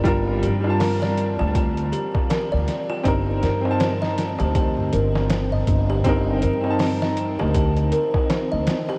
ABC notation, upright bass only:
X:1
M:4/4
L:1/16
Q:"Swing 16ths" 1/4=80
K:Cdor
V:1 name="Upright bass" clef=bass
G,,,2 G,,4- G,, D,,3 z3 D,, z2 | G,,,2 G,,4- G,, D,,3 G,,,4 G,,,2 | G,,,2 G,,4- G,, D,,3 z3 D,, z2 |]